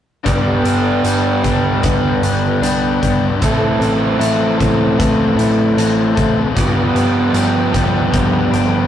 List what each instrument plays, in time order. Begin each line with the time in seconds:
0.24 picked electric bass G1, overdriven electric guitar G2 D3 G3 B3 D4 G4, kick, closed hi-hat
0.64 picked electric bass G1, overdriven electric guitar G3 B3 D4 G4, closed hi-hat
1.03 picked electric bass G1, overdriven electric guitar G3 B3 D4 G4, closed hi-hat
1.43 picked electric bass G1, overdriven electric guitar G3 B3 D4 G4, kick, closed hi-hat
1.82 overdriven electric guitar G2 D3 G3 B3 D4 G4, picked electric bass G2, clean electric guitar B4, kick, closed hi-hat
2.22 picked electric bass G1, overdriven electric guitar G3 B3 D4 G4, closed hi-hat
2.61 picked electric bass C2, overdriven electric guitar G3 B3 D4 G4, closed hi-hat
3.01 picked electric bass G1, overdriven electric guitar G3 B3 D4 G4, kick, closed hi-hat
3.39 picked electric bass A1, overdriven electric guitar A2 E3 C4 E4 A4, clean electric guitar A3, kick, closed hi-hat
3.79 picked electric bass A1, overdriven electric guitar C4 E4 A4, closed hi-hat
4.18 picked electric bass A1, overdriven electric guitar E3 C4 E4 A4, closed hi-hat
4.58 picked electric bass A1, overdriven electric guitar C4 E4 A4, kick, closed hi-hat
4.97 picked electric bass A1, overdriven electric guitar A2 E3 C4 E4 A4, clean electric guitar B4, kick, closed hi-hat
5.36 picked electric bass A1, overdriven electric guitar C4 E4 A4, closed hi-hat
5.76 picked electric bass A1, overdriven electric guitar E3 C4 E4 A4, clean electric guitar A3, closed hi-hat
6.15 picked electric bass A1, overdriven electric guitar C4 E4 A4, kick, closed hi-hat
6.54 picked electric bass G1, overdriven electric guitar G2 D3 F3 G3 B3 G4, kick, closed hi-hat
6.58 overdriven electric guitar F4
6.94 picked electric bass G1, overdriven electric guitar F3 G3 B3 G4, closed hi-hat
7.33 picked electric bass G1, overdriven electric guitar F3 G3 B3 G4, clean electric guitar D4, closed hi-hat
7.73 picked electric bass G1, overdriven electric guitar F3 G3 B3 G4, kick, closed hi-hat
8.12 overdriven electric guitar G2 D3 F3 G3 B3 G4, picked electric bass G2, kick, closed hi-hat
8.52 picked electric bass G1, overdriven electric guitar F3 G3 B3 G4, clean electric guitar D4, closed hi-hat